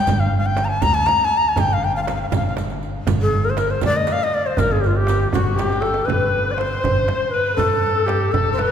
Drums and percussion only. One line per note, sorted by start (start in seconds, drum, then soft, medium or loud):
0.07 riq medium
0.07 tombak dum medium
0.07 frame drum medium
0.32 tombak ka soft
0.57 riq soft
0.57 tombak tek medium
0.57 frame drum medium
0.82 riq medium
0.82 tombak dum medium
0.82 frame drum medium
1.07 tombak tek medium
1.07 frame drum medium
1.19 riq soft
1.19 tombak ka soft
1.56 riq medium
1.56 tombak dum medium
1.56 frame drum medium
1.83 tombak ka soft
2.07 riq soft
2.07 tombak tek medium
2.07 frame drum medium
2.32 riq medium
2.32 frame drum medium
2.32 tombak dum medium
2.57 riq soft
2.57 tombak tek medium
2.57 frame drum medium
2.70 riq soft
2.70 tombak ka soft
2.83 riq soft
3.07 riq medium
3.07 tombak dum medium
3.07 frame drum loud
3.32 tombak ka soft
3.57 riq soft
3.57 tombak tek medium
3.57 frame drum medium
3.81 riq medium
3.81 tombak dum medium
3.81 frame drum loud
4.07 riq medium
4.07 tombak tek medium
4.07 frame drum medium
4.20 riq soft
4.20 tombak ka soft
4.57 riq medium
4.57 tombak dum medium
4.57 frame drum medium
4.83 riq soft
4.83 tombak ka soft
5.07 riq medium
5.07 tombak tek medium
5.07 frame drum medium
5.33 riq medium
5.33 tombak dum loud
5.33 frame drum medium
5.58 riq medium
5.58 tombak tek medium
5.58 frame drum medium
5.70 riq soft
5.70 tombak ka medium
5.82 riq soft
5.82 tombak tek medium
5.94 tombak ka medium
6.08 tombak dum medium
6.08 frame drum medium
6.58 tombak tek medium
6.58 frame drum medium
6.84 tombak dum medium
6.84 frame drum medium
7.08 tombak tek medium
7.08 frame drum medium
7.57 tombak dum medium
7.57 frame drum medium
8.08 tombak tek medium
8.08 frame drum medium
8.34 tombak dum medium
8.34 frame drum medium
8.59 tombak tek medium
8.59 frame drum medium